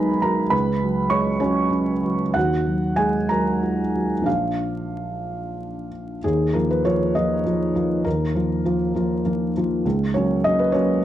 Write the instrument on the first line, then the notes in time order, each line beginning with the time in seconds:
felt piano
Already playing: B1 F#3 G#3 D#4 G#4 A#4 B4 G#5 A#5 B5
0.22 F#3 A#4 A#5
0.50 C#2 B4 B5
0.82 F#3
1.10 G#3 C#5 C#6
1.40 F#3 C#4 C#5
1.70 C#4
2.03 F#3
2.34 D#2 F#4 F#5
2.66 F#3
2.96 G#3 G#4 G#5
3.29 F#3 A#4 A#5
3.63 F4
3.95 F#3
4.21 A#1 F3 D4
4.26 F4 F5
6.24 D#2 G#4
6.53 F3 A#3 F4 A#4
6.71 B4
6.85 F3 A#3 F4 C#5
7.15 F3 A#3 F4 D#5
7.45 F3 A#3 F4
7.75 F3 A#3 F4
8.04 D#2 A#4
8.35 F3 A#3 F4
8.65 F3 A#3 F4
8.94 F3 A#3 F4
9.25 F3 A#3 F4
9.57 F3 A#3 F4
9.85 C#2
10.14 F#3 A#3 C#4 C#5
10.44 F#3 A#3 C#4 D#5
10.59 B4
10.72 F#3 A#3 C#4 C#5